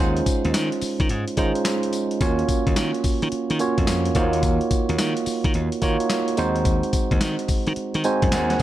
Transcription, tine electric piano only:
0.00 G#3 C#4 D#4 F4 C5
1.37 G#3 C#4 D#4 F4 C5
2.21 A#3 C#4 F4 F#4 C#5
3.60 A#3 C#4 F4 F#4 C#5
4.15 A#3 D#4 F4 F#4 C5
4.23 C#5
5.82 A#3 D#4 F4 F#4 C#5
6.37 G#3 C4 D#4 F#4 C5
8.04 G#3 C4 D#4 F#4 C5 G#5
8.32 C5 F#5 G#5
8.50 A#4 F#5

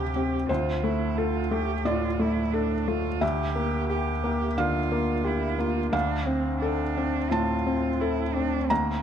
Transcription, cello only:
Already playing: G4
0.50 F4
0.84 E4
1.18 F4
1.52 G4
1.86 F4
2.21 E4
2.54 D4
2.88 F4
3.23 G4
3.90 G4
4.60 F4
5.27 E4
5.60 F4
5.92 D4
6.26 C4
6.61 D4
7.30 F4
8.01 E4
8.34 D4
8.69 A#3

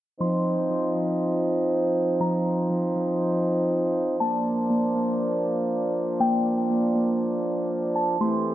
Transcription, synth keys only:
0.20 F3
0.70 F3
0.95 F3
2.20 F3
2.70 F3
2.96 F3
4.21 A#3
4.70 A#3
4.95 A#3
6.20 A#3
6.70 A#3
6.95 A#3
8.21 A3

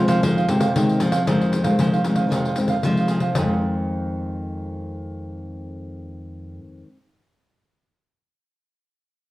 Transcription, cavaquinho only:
0.09 G#4 C5 F5
0.23 D#4 G#4 C5 F5
0.37 G#4 C5 F5
0.48 muted cavaquinho stroke
0.60 G#4 C5 F5
1.00 D#4 G#4 C5 F5
1.12 G#4 C5 F5
1.27 D#4 G#4 C5 F5
1.52 muted cavaquinho stroke
1.64 G#4 C5 F5
1.79 D#4 G#4 C5 F5
1.93 G#4 C5 F5
2.04 D#4 G#4 C5 F5
2.16 G#4 C5 F5
2.32 D#4 G#4 C5 F5
2.46 G#4 C5 F5
2.58 muted cavaquinho stroke
2.69 G#4 C5 F5
2.98 G#4 C5 F5
3.09 D#4 G#4 C5 F5
3.22 G#4 C5 F5
3.37 D#4 G#4 C5 F5

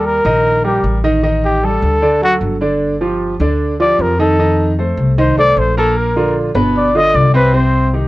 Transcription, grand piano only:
Already playing: G3 G4 A#4
0.25 D#3 D#4 D#5
0.64 G3 G4 A#4
1.04 D#3 D#4 D#5
1.23 D#3 D#4 D#5
1.63 G3 G4 A4
2.02 D3 D4 D5
2.22 F#3 F#4 A4
2.61 D3 D4 D5
3.01 F3 F4 G4
3.40 D3 D4 D5
3.80 F3 F4 G4
4.19 D#3 D#4 D#5
4.39 D#3 D#4 D#5
4.79 A3 A4 C5
5.18 D#3 D#4 D#5
5.37 A3 A4 C5
5.77 A#2 A#3 A#4
6.16 D3 D4 F4
6.55 B2 B3 B4
6.95 D3 D4 F4
7.34 C3 C4 C5
7.54 C3 C4 C5
7.93 D#3 D#4 G4

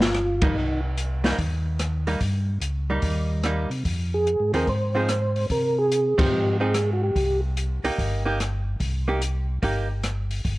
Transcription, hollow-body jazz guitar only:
0.42 G3 A#3 D#4
1.24 G3 A#3 D#4
2.07 G3 A#3 D#4
2.90 G3 A#3 D#4
3.44 G3 A#3 D#4
4.54 F3 C4 D#4 G#4
4.95 F3 C4 D#4 G#4
6.18 F3 C4 D#4
6.60 F3 C4 D#4 G#4
7.84 A#3 D#4 G4
8.25 A#3 D#4 G4
9.08 A#3 D#4 G4
9.62 A#3 D#4 G4

